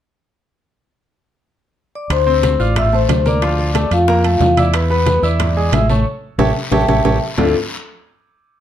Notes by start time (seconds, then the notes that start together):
1.95 D5 D6
2.10 D2 C5 C6, high bongo, high conga, high timbale, long guiro
2.26 C4 C5 C6, high bongo, high conga
2.43 C5 C6, high bongo, high conga, high timbale, low timbale, short guiro
2.59 A1 F4 D5 F5 D6 F6, high bongo, high conga, short guiro
2.76 E5 E6, high bongo, high conga, low conga, high timbale, long guiro
2.93 A3 A4 C5 A5 C6, high bongo, high conga
3.09 D2, high bongo, low bongo, high conga, high timbale, low timbale, short guiro
3.25 A#3 A#4 D5 A#5 D6, high conga, short guiro
3.42 F3 F4 F5, high bongo, high conga, high timbale, long guiro
3.59 D5 D6, high bongo, high conga
3.74 A3 A4 A5, high bongo, high conga, high timbale, low timbale, short guiro
3.91 F2 F4 F5, high bongo, high conga, high timbale, short guiro
4.08 A#3 F4 A#4 F5 A#5, high bongo, high conga, long guiro
4.24 A3 A4 A5, high bongo, high conga, high timbale
4.40 E2, high bongo, low bongo, high conga, low timbale, short guiro
4.57 E4 D5 E5 D6 E6, high conga, high timbale, short guiro
4.74 B4 B5, high bongo, high timbale, long guiro
4.90 B3 B4 B5, high bongo, high conga
5.06 B4 B5, high bongo, high conga, high timbale, low timbale, short guiro
5.22 E2 E4 D5 E5 D6 E6, high bongo, high conga, short guiro
5.40 high bongo, high conga, low conga, high timbale, long guiro
5.56 G#3 G#4 G#5, high bongo, high conga
5.72 A1 E5 E6, high bongo, low bongo, high conga, high timbale, low timbale, short guiro
5.89 A3 A4 C#5 A5 C#6, high conga, short guiro
6.38 A1 G4 A4 C#5 E5 G5 A5, low bongo, high conga, high timbale, long guiro
6.72 A1 G4 A4 C#5 E5 G5 A5, low bongo, high conga, high timbale, long guiro
6.88 A1 G4 A4 C#5 E5 G5 A5, low bongo, high conga, high timbale, long guiro
7.05 A1 G4 A4 C#5 E5 G5 A5, low bongo, high conga, high timbale, long guiro
7.37 D2 D3 A3 C4 D4 E4 F4 A4, low bongo, low conga, low timbale, long guiro